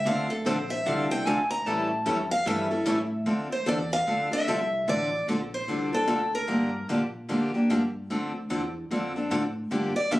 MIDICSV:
0, 0, Header, 1, 5, 480
1, 0, Start_track
1, 0, Key_signature, -1, "minor"
1, 0, Tempo, 402414
1, 62, Time_signature, 4, 2, 24, 8
1, 12161, End_track
2, 0, Start_track
2, 0, Title_t, "Steel-string acoustic guitar"
2, 0, Program_c, 0, 25
2, 78, Note_on_c, 0, 77, 91
2, 356, Note_off_c, 0, 77, 0
2, 359, Note_on_c, 0, 69, 68
2, 537, Note_off_c, 0, 69, 0
2, 553, Note_on_c, 0, 72, 68
2, 833, Note_off_c, 0, 72, 0
2, 837, Note_on_c, 0, 76, 89
2, 1029, Note_off_c, 0, 76, 0
2, 1029, Note_on_c, 0, 77, 84
2, 1311, Note_off_c, 0, 77, 0
2, 1328, Note_on_c, 0, 79, 94
2, 1509, Note_off_c, 0, 79, 0
2, 1509, Note_on_c, 0, 80, 81
2, 1790, Note_off_c, 0, 80, 0
2, 1796, Note_on_c, 0, 82, 103
2, 1991, Note_off_c, 0, 82, 0
2, 1991, Note_on_c, 0, 81, 83
2, 2755, Note_off_c, 0, 81, 0
2, 2760, Note_on_c, 0, 77, 97
2, 2935, Note_off_c, 0, 77, 0
2, 2951, Note_on_c, 0, 76, 95
2, 3763, Note_off_c, 0, 76, 0
2, 4203, Note_on_c, 0, 72, 81
2, 4370, Note_off_c, 0, 72, 0
2, 4395, Note_on_c, 0, 74, 90
2, 4661, Note_off_c, 0, 74, 0
2, 4687, Note_on_c, 0, 77, 108
2, 5161, Note_off_c, 0, 77, 0
2, 5166, Note_on_c, 0, 76, 100
2, 5831, Note_off_c, 0, 76, 0
2, 5836, Note_on_c, 0, 74, 100
2, 6274, Note_off_c, 0, 74, 0
2, 6610, Note_on_c, 0, 72, 85
2, 7086, Note_off_c, 0, 72, 0
2, 7091, Note_on_c, 0, 69, 77
2, 7530, Note_off_c, 0, 69, 0
2, 7572, Note_on_c, 0, 70, 75
2, 8182, Note_off_c, 0, 70, 0
2, 11880, Note_on_c, 0, 74, 83
2, 12050, Note_off_c, 0, 74, 0
2, 12073, Note_on_c, 0, 76, 85
2, 12161, Note_off_c, 0, 76, 0
2, 12161, End_track
3, 0, Start_track
3, 0, Title_t, "Steel-string acoustic guitar"
3, 0, Program_c, 1, 25
3, 62, Note_on_c, 1, 50, 70
3, 70, Note_on_c, 1, 53, 73
3, 71, Note_on_c, 1, 60, 77
3, 71, Note_on_c, 1, 62, 69
3, 75, Note_on_c, 1, 69, 76
3, 309, Note_off_c, 1, 50, 0
3, 313, Note_off_c, 1, 53, 0
3, 314, Note_off_c, 1, 60, 0
3, 314, Note_off_c, 1, 62, 0
3, 315, Note_off_c, 1, 69, 0
3, 547, Note_on_c, 1, 50, 86
3, 550, Note_on_c, 1, 53, 92
3, 552, Note_on_c, 1, 62, 101
3, 554, Note_on_c, 1, 60, 101
3, 558, Note_on_c, 1, 69, 98
3, 675, Note_off_c, 1, 50, 0
3, 677, Note_off_c, 1, 53, 0
3, 678, Note_off_c, 1, 62, 0
3, 679, Note_off_c, 1, 60, 0
3, 680, Note_off_c, 1, 69, 0
3, 1021, Note_on_c, 1, 50, 68
3, 1031, Note_on_c, 1, 53, 74
3, 1031, Note_on_c, 1, 62, 65
3, 1033, Note_on_c, 1, 60, 69
3, 1034, Note_on_c, 1, 69, 74
3, 1268, Note_off_c, 1, 50, 0
3, 1273, Note_off_c, 1, 53, 0
3, 1273, Note_off_c, 1, 62, 0
3, 1274, Note_off_c, 1, 60, 0
3, 1274, Note_off_c, 1, 69, 0
3, 1324, Note_on_c, 1, 69, 53
3, 1337, Note_on_c, 1, 62, 47
3, 1345, Note_on_c, 1, 60, 43
3, 1497, Note_off_c, 1, 69, 0
3, 1503, Note_off_c, 1, 62, 0
3, 1504, Note_off_c, 1, 60, 0
3, 1508, Note_on_c, 1, 50, 86
3, 1515, Note_on_c, 1, 53, 112
3, 1516, Note_on_c, 1, 62, 99
3, 1518, Note_on_c, 1, 60, 97
3, 1520, Note_on_c, 1, 69, 105
3, 1634, Note_off_c, 1, 50, 0
3, 1638, Note_off_c, 1, 53, 0
3, 1639, Note_off_c, 1, 62, 0
3, 1640, Note_off_c, 1, 60, 0
3, 1640, Note_off_c, 1, 69, 0
3, 1984, Note_on_c, 1, 52, 74
3, 1987, Note_on_c, 1, 55, 79
3, 1990, Note_on_c, 1, 61, 71
3, 1995, Note_on_c, 1, 69, 81
3, 1998, Note_on_c, 1, 64, 71
3, 2228, Note_off_c, 1, 52, 0
3, 2230, Note_off_c, 1, 55, 0
3, 2232, Note_off_c, 1, 61, 0
3, 2234, Note_off_c, 1, 69, 0
3, 2235, Note_off_c, 1, 64, 0
3, 2453, Note_on_c, 1, 55, 87
3, 2456, Note_on_c, 1, 52, 89
3, 2458, Note_on_c, 1, 61, 87
3, 2458, Note_on_c, 1, 64, 97
3, 2460, Note_on_c, 1, 69, 87
3, 2586, Note_off_c, 1, 55, 0
3, 2588, Note_off_c, 1, 52, 0
3, 2589, Note_off_c, 1, 61, 0
3, 2589, Note_off_c, 1, 64, 0
3, 2590, Note_off_c, 1, 69, 0
3, 2928, Note_on_c, 1, 52, 68
3, 2933, Note_on_c, 1, 55, 64
3, 2934, Note_on_c, 1, 61, 67
3, 2937, Note_on_c, 1, 64, 69
3, 2937, Note_on_c, 1, 69, 86
3, 3180, Note_off_c, 1, 52, 0
3, 3182, Note_off_c, 1, 55, 0
3, 3183, Note_off_c, 1, 61, 0
3, 3184, Note_off_c, 1, 64, 0
3, 3185, Note_off_c, 1, 69, 0
3, 3229, Note_on_c, 1, 69, 54
3, 3237, Note_on_c, 1, 64, 45
3, 3242, Note_on_c, 1, 61, 40
3, 3400, Note_off_c, 1, 64, 0
3, 3402, Note_off_c, 1, 61, 0
3, 3405, Note_off_c, 1, 69, 0
3, 3407, Note_on_c, 1, 55, 91
3, 3408, Note_on_c, 1, 52, 106
3, 3415, Note_on_c, 1, 64, 103
3, 3417, Note_on_c, 1, 61, 102
3, 3419, Note_on_c, 1, 69, 96
3, 3543, Note_off_c, 1, 55, 0
3, 3544, Note_off_c, 1, 52, 0
3, 3547, Note_off_c, 1, 64, 0
3, 3548, Note_off_c, 1, 61, 0
3, 3549, Note_off_c, 1, 69, 0
3, 3888, Note_on_c, 1, 53, 66
3, 3889, Note_on_c, 1, 50, 67
3, 3890, Note_on_c, 1, 60, 64
3, 3895, Note_on_c, 1, 62, 65
3, 3897, Note_on_c, 1, 69, 69
3, 4140, Note_off_c, 1, 50, 0
3, 4140, Note_off_c, 1, 53, 0
3, 4141, Note_off_c, 1, 60, 0
3, 4143, Note_off_c, 1, 62, 0
3, 4144, Note_off_c, 1, 69, 0
3, 4366, Note_on_c, 1, 50, 75
3, 4366, Note_on_c, 1, 53, 76
3, 4369, Note_on_c, 1, 69, 90
3, 4370, Note_on_c, 1, 60, 83
3, 4374, Note_on_c, 1, 62, 94
3, 4502, Note_off_c, 1, 53, 0
3, 4503, Note_off_c, 1, 50, 0
3, 4504, Note_off_c, 1, 60, 0
3, 4504, Note_off_c, 1, 69, 0
3, 4507, Note_off_c, 1, 62, 0
3, 4855, Note_on_c, 1, 50, 61
3, 4860, Note_on_c, 1, 53, 63
3, 4860, Note_on_c, 1, 60, 59
3, 4864, Note_on_c, 1, 69, 67
3, 4866, Note_on_c, 1, 62, 67
3, 5104, Note_off_c, 1, 50, 0
3, 5106, Note_off_c, 1, 53, 0
3, 5106, Note_off_c, 1, 60, 0
3, 5108, Note_off_c, 1, 69, 0
3, 5109, Note_off_c, 1, 62, 0
3, 5144, Note_on_c, 1, 69, 42
3, 5156, Note_on_c, 1, 62, 45
3, 5161, Note_on_c, 1, 60, 35
3, 5326, Note_off_c, 1, 69, 0
3, 5332, Note_off_c, 1, 62, 0
3, 5334, Note_off_c, 1, 60, 0
3, 5339, Note_on_c, 1, 50, 84
3, 5345, Note_on_c, 1, 53, 98
3, 5345, Note_on_c, 1, 62, 99
3, 5346, Note_on_c, 1, 60, 96
3, 5348, Note_on_c, 1, 69, 98
3, 5469, Note_off_c, 1, 50, 0
3, 5472, Note_off_c, 1, 53, 0
3, 5472, Note_off_c, 1, 62, 0
3, 5473, Note_off_c, 1, 60, 0
3, 5474, Note_off_c, 1, 69, 0
3, 5817, Note_on_c, 1, 50, 69
3, 5821, Note_on_c, 1, 53, 67
3, 5823, Note_on_c, 1, 60, 66
3, 5827, Note_on_c, 1, 62, 64
3, 5827, Note_on_c, 1, 69, 70
3, 6065, Note_off_c, 1, 50, 0
3, 6067, Note_off_c, 1, 53, 0
3, 6068, Note_off_c, 1, 60, 0
3, 6070, Note_off_c, 1, 62, 0
3, 6070, Note_off_c, 1, 69, 0
3, 6300, Note_on_c, 1, 50, 73
3, 6305, Note_on_c, 1, 62, 89
3, 6306, Note_on_c, 1, 53, 77
3, 6306, Note_on_c, 1, 60, 79
3, 6307, Note_on_c, 1, 69, 83
3, 6430, Note_off_c, 1, 50, 0
3, 6433, Note_off_c, 1, 53, 0
3, 6433, Note_off_c, 1, 60, 0
3, 6433, Note_off_c, 1, 62, 0
3, 6434, Note_off_c, 1, 69, 0
3, 6776, Note_on_c, 1, 50, 66
3, 6781, Note_on_c, 1, 53, 63
3, 6782, Note_on_c, 1, 60, 64
3, 6787, Note_on_c, 1, 62, 72
3, 6789, Note_on_c, 1, 69, 61
3, 7025, Note_off_c, 1, 50, 0
3, 7028, Note_off_c, 1, 53, 0
3, 7028, Note_off_c, 1, 60, 0
3, 7030, Note_off_c, 1, 62, 0
3, 7031, Note_off_c, 1, 69, 0
3, 7069, Note_on_c, 1, 69, 46
3, 7074, Note_on_c, 1, 62, 49
3, 7082, Note_on_c, 1, 60, 42
3, 7235, Note_off_c, 1, 60, 0
3, 7240, Note_off_c, 1, 62, 0
3, 7241, Note_off_c, 1, 69, 0
3, 7246, Note_on_c, 1, 50, 89
3, 7246, Note_on_c, 1, 53, 98
3, 7250, Note_on_c, 1, 60, 93
3, 7254, Note_on_c, 1, 62, 87
3, 7255, Note_on_c, 1, 69, 102
3, 7384, Note_off_c, 1, 50, 0
3, 7384, Note_off_c, 1, 53, 0
3, 7385, Note_off_c, 1, 60, 0
3, 7388, Note_off_c, 1, 62, 0
3, 7388, Note_off_c, 1, 69, 0
3, 7720, Note_on_c, 1, 50, 70
3, 7725, Note_on_c, 1, 53, 65
3, 7731, Note_on_c, 1, 58, 72
3, 7731, Note_on_c, 1, 62, 73
3, 7735, Note_on_c, 1, 67, 73
3, 7978, Note_off_c, 1, 50, 0
3, 7980, Note_off_c, 1, 53, 0
3, 7983, Note_off_c, 1, 58, 0
3, 7983, Note_off_c, 1, 62, 0
3, 7985, Note_off_c, 1, 67, 0
3, 8218, Note_on_c, 1, 50, 73
3, 8220, Note_on_c, 1, 53, 85
3, 8220, Note_on_c, 1, 58, 82
3, 8228, Note_on_c, 1, 62, 94
3, 8231, Note_on_c, 1, 67, 88
3, 8350, Note_off_c, 1, 50, 0
3, 8351, Note_off_c, 1, 53, 0
3, 8351, Note_off_c, 1, 58, 0
3, 8355, Note_off_c, 1, 62, 0
3, 8356, Note_off_c, 1, 67, 0
3, 8691, Note_on_c, 1, 50, 59
3, 8695, Note_on_c, 1, 53, 68
3, 8697, Note_on_c, 1, 58, 74
3, 8701, Note_on_c, 1, 62, 72
3, 8704, Note_on_c, 1, 67, 77
3, 8943, Note_off_c, 1, 50, 0
3, 8945, Note_off_c, 1, 53, 0
3, 8946, Note_off_c, 1, 58, 0
3, 8948, Note_off_c, 1, 62, 0
3, 8950, Note_off_c, 1, 67, 0
3, 8994, Note_on_c, 1, 67, 49
3, 9003, Note_on_c, 1, 62, 49
3, 9008, Note_on_c, 1, 58, 42
3, 9172, Note_off_c, 1, 67, 0
3, 9177, Note_off_c, 1, 62, 0
3, 9179, Note_off_c, 1, 58, 0
3, 9182, Note_on_c, 1, 50, 85
3, 9186, Note_on_c, 1, 53, 95
3, 9189, Note_on_c, 1, 62, 94
3, 9193, Note_on_c, 1, 58, 88
3, 9198, Note_on_c, 1, 67, 102
3, 9312, Note_off_c, 1, 50, 0
3, 9314, Note_off_c, 1, 53, 0
3, 9316, Note_off_c, 1, 62, 0
3, 9318, Note_off_c, 1, 58, 0
3, 9320, Note_off_c, 1, 67, 0
3, 9663, Note_on_c, 1, 50, 65
3, 9668, Note_on_c, 1, 53, 69
3, 9668, Note_on_c, 1, 62, 69
3, 9670, Note_on_c, 1, 60, 74
3, 9677, Note_on_c, 1, 69, 81
3, 9909, Note_off_c, 1, 50, 0
3, 9912, Note_off_c, 1, 53, 0
3, 9912, Note_off_c, 1, 62, 0
3, 9913, Note_off_c, 1, 60, 0
3, 9917, Note_off_c, 1, 69, 0
3, 10139, Note_on_c, 1, 50, 77
3, 10140, Note_on_c, 1, 53, 85
3, 10142, Note_on_c, 1, 60, 83
3, 10143, Note_on_c, 1, 62, 82
3, 10144, Note_on_c, 1, 69, 91
3, 10271, Note_off_c, 1, 50, 0
3, 10271, Note_off_c, 1, 53, 0
3, 10272, Note_off_c, 1, 60, 0
3, 10273, Note_off_c, 1, 62, 0
3, 10273, Note_off_c, 1, 69, 0
3, 10630, Note_on_c, 1, 50, 60
3, 10630, Note_on_c, 1, 53, 59
3, 10633, Note_on_c, 1, 60, 62
3, 10633, Note_on_c, 1, 69, 74
3, 10639, Note_on_c, 1, 62, 66
3, 10873, Note_off_c, 1, 50, 0
3, 10873, Note_off_c, 1, 53, 0
3, 10874, Note_off_c, 1, 69, 0
3, 10875, Note_off_c, 1, 60, 0
3, 10878, Note_off_c, 1, 62, 0
3, 10926, Note_on_c, 1, 69, 50
3, 10934, Note_on_c, 1, 62, 38
3, 10940, Note_on_c, 1, 60, 38
3, 11092, Note_off_c, 1, 60, 0
3, 11093, Note_off_c, 1, 69, 0
3, 11097, Note_off_c, 1, 62, 0
3, 11103, Note_on_c, 1, 50, 80
3, 11106, Note_on_c, 1, 60, 77
3, 11108, Note_on_c, 1, 69, 91
3, 11109, Note_on_c, 1, 53, 80
3, 11111, Note_on_c, 1, 62, 107
3, 11233, Note_off_c, 1, 50, 0
3, 11235, Note_off_c, 1, 60, 0
3, 11235, Note_off_c, 1, 69, 0
3, 11236, Note_off_c, 1, 53, 0
3, 11237, Note_off_c, 1, 62, 0
3, 11580, Note_on_c, 1, 50, 63
3, 11585, Note_on_c, 1, 53, 72
3, 11586, Note_on_c, 1, 58, 65
3, 11589, Note_on_c, 1, 62, 72
3, 11590, Note_on_c, 1, 67, 76
3, 11828, Note_off_c, 1, 50, 0
3, 11831, Note_off_c, 1, 53, 0
3, 11831, Note_off_c, 1, 58, 0
3, 11833, Note_off_c, 1, 62, 0
3, 11833, Note_off_c, 1, 67, 0
3, 12059, Note_on_c, 1, 50, 77
3, 12064, Note_on_c, 1, 58, 85
3, 12065, Note_on_c, 1, 53, 87
3, 12067, Note_on_c, 1, 62, 87
3, 12067, Note_on_c, 1, 67, 93
3, 12161, Note_off_c, 1, 50, 0
3, 12161, Note_off_c, 1, 53, 0
3, 12161, Note_off_c, 1, 58, 0
3, 12161, Note_off_c, 1, 62, 0
3, 12161, Note_off_c, 1, 67, 0
3, 12161, End_track
4, 0, Start_track
4, 0, Title_t, "Upright bass"
4, 0, Program_c, 2, 32
4, 62, Note_on_c, 2, 38, 93
4, 527, Note_off_c, 2, 38, 0
4, 543, Note_on_c, 2, 34, 80
4, 1007, Note_off_c, 2, 34, 0
4, 1027, Note_on_c, 2, 36, 93
4, 1488, Note_off_c, 2, 36, 0
4, 1499, Note_on_c, 2, 38, 87
4, 1964, Note_off_c, 2, 38, 0
4, 1980, Note_on_c, 2, 45, 93
4, 2444, Note_off_c, 2, 45, 0
4, 2461, Note_on_c, 2, 41, 82
4, 2924, Note_off_c, 2, 41, 0
4, 2935, Note_on_c, 2, 43, 86
4, 3401, Note_off_c, 2, 43, 0
4, 3415, Note_on_c, 2, 45, 98
4, 3881, Note_off_c, 2, 45, 0
4, 3894, Note_on_c, 2, 38, 82
4, 4361, Note_off_c, 2, 38, 0
4, 4378, Note_on_c, 2, 40, 84
4, 4843, Note_off_c, 2, 40, 0
4, 4855, Note_on_c, 2, 38, 84
4, 5322, Note_off_c, 2, 38, 0
4, 5337, Note_on_c, 2, 36, 87
4, 5803, Note_off_c, 2, 36, 0
4, 5818, Note_on_c, 2, 33, 83
4, 6284, Note_off_c, 2, 33, 0
4, 6295, Note_on_c, 2, 34, 82
4, 6762, Note_off_c, 2, 34, 0
4, 6775, Note_on_c, 2, 36, 76
4, 7243, Note_off_c, 2, 36, 0
4, 7254, Note_on_c, 2, 38, 83
4, 7717, Note_off_c, 2, 38, 0
4, 7724, Note_on_c, 2, 43, 86
4, 8198, Note_off_c, 2, 43, 0
4, 8213, Note_on_c, 2, 46, 83
4, 8682, Note_off_c, 2, 46, 0
4, 8699, Note_on_c, 2, 41, 74
4, 9165, Note_off_c, 2, 41, 0
4, 9182, Note_on_c, 2, 43, 86
4, 9647, Note_off_c, 2, 43, 0
4, 9664, Note_on_c, 2, 38, 79
4, 10128, Note_off_c, 2, 38, 0
4, 10145, Note_on_c, 2, 40, 86
4, 10608, Note_off_c, 2, 40, 0
4, 10622, Note_on_c, 2, 41, 86
4, 11087, Note_off_c, 2, 41, 0
4, 11097, Note_on_c, 2, 45, 88
4, 11565, Note_off_c, 2, 45, 0
4, 11582, Note_on_c, 2, 43, 82
4, 11856, Note_off_c, 2, 43, 0
4, 12062, Note_on_c, 2, 41, 89
4, 12161, Note_off_c, 2, 41, 0
4, 12161, End_track
5, 0, Start_track
5, 0, Title_t, "Muted upright bass strokes"
5, 11883, Note_on_c, 9, 29, 37
5, 12003, Note_off_c, 9, 29, 0
5, 12161, End_track
0, 0, End_of_file